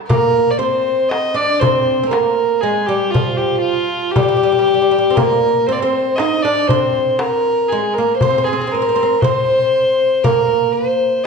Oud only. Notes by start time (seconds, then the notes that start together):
0.09 A#3
0.59 C4
1.34 D4
1.61 C4
2.03 C4
2.11 A#3
2.63 G#3
2.89 G3
3.14 F3
4.16 G3
4.23 G3
4.28 G3
4.37 G3
4.43 G3
4.52 G3
4.59 G3
4.67 G3
4.74 G3
4.82 G3
4.91 G3
4.98 G3
5.10 C4
5.17 A#3
5.69 C4
5.82 C4
6.20 D#4
6.45 D4
6.70 C4
7.72 G#3
7.98 A#3
8.22 C4
8.31 C4
8.38 C4
8.47 C4
8.53 C4
8.62 C4
8.67 C4
8.74 C4
8.82 C4
8.89 C4
8.96 C4
9.03 C4
9.24 C4
10.24 A#3